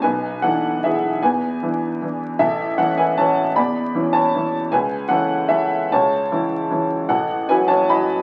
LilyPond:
\new Staff \with { instrumentName = "Upright piano" } { \time 3/4 \key a \major \tempo 4 = 153 << { <b' gis''>4 <a' fis''>4 <gis' e''>4 | <b' gis''>2~ <b' gis''>8 r8 | <a' e''>4 <a' fis''>8 <b' gis''>8 <cis'' a''>4 | <d'' b''>4. <cis'' a''>4. |
<b' gis''>4 <a' fis''>4 <a' e''>4 | <cis'' a''>2~ <cis'' a''>8 r8 | \key fis \dorian <a' fis''>4 <b' gis''>8 <cis'' a''>8 <dis'' b''>4 | } \\ { b,,4 <e d' e'>4 <e d' e'>4 | e,4 <e d' e'>4 <e d' e'>4 | a,,4 <e cis' e'>4 <e cis' e'>4 | e,4 <e cis' e'>4 <e cis' e'>4 |
cis,4 <e cis' e'>4 <e cis' e'>4 | cis,4 <e cis' e'>4 <e cis' e'>4 | a,,4 <fis cis' e'>4 <fis cis' e'>4 | } >> }